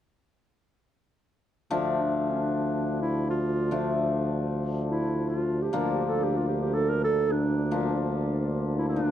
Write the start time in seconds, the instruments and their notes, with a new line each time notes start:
1.71 tuba D2, hammered dulcimer F3 A3 D4
1.98 clarinet D4
2.30 clarinet C#4
2.42 clarinet D4
3.02 clarinet E4
3.30 clarinet F4
3.71 hammered dulcimer F3 A3 D4
4.92 clarinet E4
5.29 clarinet F4
5.62 clarinet G4
5.73 tuba D2, hammered dulcimer F3 A#3 D4, clarinet F4
5.93 clarinet G4
6.09 clarinet A4
6.23 clarinet G4
6.37 clarinet F4
6.48 clarinet G4
6.62 clarinet G4
6.74 clarinet A4
6.89 clarinet A#4
7.04 clarinet A4
7.32 clarinet D4
7.71 hammered dulcimer F3 A#3 D4
8.78 clarinet E4
8.89 clarinet D4
8.96 hammered dulcimer F3 A#3 D4